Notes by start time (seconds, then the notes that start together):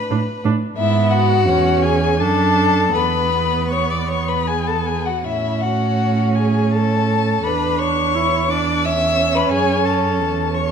Already playing: B4 B5
0.10 A2 D4
0.44 A2 D4
0.77 G#2 B3 E4 E5
1.11 F#4 F#5
1.47 E2 C#4
1.82 G#4 G#5
2.20 F#2 D4 A4 A5
2.95 E2 B3 B4 B5
3.71 C#5 C#6
3.90 D5 D6
4.09 C#5 C#6
4.28 B4 B5
4.47 G#4 G#5
4.67 A4 A5
4.86 G#4 G#5
5.05 F#4 F#5
5.24 A2 C#4 E4 E5
5.61 F#4 F#5
6.35 G#4 G#5
6.74 A4 A5
7.44 E2 D4 B4 B5
7.78 C#5 C#6
8.15 E4
8.50 D4 D5 D6
8.84 C#4 E5 E6
9.35 B4 B5
9.51 F#2 G#4 G#5
9.83 A4 A5
10.19 E2
10.54 C#5 C#6